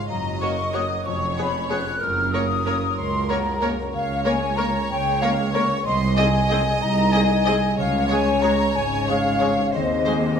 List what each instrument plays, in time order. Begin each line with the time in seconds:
Already playing: harp C#3 C#4 G#4 C#5 F5
0.09 double bass section F#1, cello section F#2, harp F#2, violin section D#5, flute section A#5
0.40 viola section A#3 F#4, french horn section A#3 C#4, harp C#4, violin section C#5, flute section C#6
0.73 viola section A#3 F#4, french horn section A#3 C#4, harp F#4 A#4, violin section C#5, flute section D#6
1.05 double bass section F1, cello section F2, harp F2, violin section C#5, flute section C#6
1.37 viola section B3 G#4, french horn section B3 C#4, harp C#4, violin section C#5, flute section B5
1.70 viola section B3 G#4, french horn section B3 C#4, harp G#4 B4, violin section C#5, flute section F#6
2.00 double bass section F#1, cello section F#2, harp F#2, violin section A#4, flute section F6
2.33 viola section A#3 A#4, french horn section A#3 C#4, harp C#4, violin section C#5, flute section D#6
2.65 viola section A#3 A#4, french horn section A#3 C#4, harp A#4, violin section C#5
2.97 cello section C#2, double bass section C#2, harp C#5, flute section C6
3.29 viola section A#3 A#4, french horn section A#3 C#4, violin section C#5, harp F#5, flute section A#5
3.61 viola section A#3 A#4, french horn section A#3 C#4, violin section C#5, harp C#5
3.93 cello section C#2, double bass section C#2, harp C#3, violin section C#5, flute section F5
4.25 viola section A#3 A#4, french horn section A#3 C#4, harp C#4, violin section C#5, flute section G#5
4.57 viola section A#3 A#4, french horn section A#3 C#4, harp A#4, violin section C#5, flute section A#5
4.90 cello section C#2, double bass section C#2, harp C#5, flute section G5
5.22 viola section A#3 A#4, french horn section A#3 C#4, violin section C#5, flute section F5, harp F5
5.52 french horn section A#3 C#4, viola section A#3 A#4, violin section C#5, harp C#5, flute section C#6
5.85 cello section C2, double bass section C2, harp C3, violin section D#5, flute section C6
6.17 harp G#3, french horn section G#3 D#4, viola section C4 G#4, violin section D#5, flute section G#5
6.49 french horn section G#3 D#4, viola section C4 G#4, harp G#4, violin section D#5
6.81 double bass section C2, cello section C2, harp D#4, flute section A#5
7.13 french horn section G#3 D#4, viola section C4 G#4, violin section D#5, harp D#5, flute section G#5
7.45 french horn section G#3 D#4, viola section C4 G#4, harp G#4, violin section D#5
7.76 cello section C#2, double bass section C#2, harp C#3, french horn section G#3 C#4, violin section C#5, flute section F5
8.09 viola section G#3 G#4, harp C#4, violin section C#5, flute section G#5
8.41 viola section G#3 G#4, harp G#4, violin section C#5, flute section A#5
8.75 double bass section G#1, cello section G#2, french horn section G#3 C#4, harp C#5, flute section G#5
9.08 viola section G#3 G#4, violin section C#5, flute section F5, harp G#5
9.40 viola section G#3 G#4, violin section C#5, harp C#5
9.67 flute section F5
9.73 cello section D#2, double bass section D#2, harp D#3, french horn section G#3 C4, violin section C5, flute section D#5
10.06 viola section G#3 G#4, harp C4, violin section C5